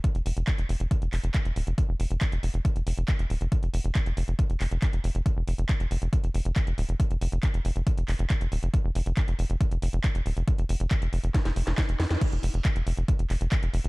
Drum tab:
CC |----------------|----------------|----------------|----------------|
HH |xxoxxxoxxxoxxxox|x-oxxxoxxxoxxxox|xxoxxxoxxxoxxxox|x-oxxxoxxxoxxxox|
CP |----x-----x-x---|----x-------x---|----x-----x-x---|----x-------x---|
SD |----------------|----------------|----------------|----------------|
BD |o---o---o---o---|o---o---o---o---|o---o---o---o---|o---o---o---o---|

CC |----------------|----------------|----------------|x---------------|
HH |xxoxxxoxxxoxxxox|x-oxxxoxxxoxxxox|xxoxxxoxxxoxxxox|xxoxxxoxxxoxxxox|
CP |----x-----x-x---|----x-------x---|----x-------x---|----x-----x-x---|
SD |----------------|----------------|--------oo-oo-oo|----------------|
BD |o---o---o---o---|o---o---o---o---|o---o---o---o---|o---o---o---o---|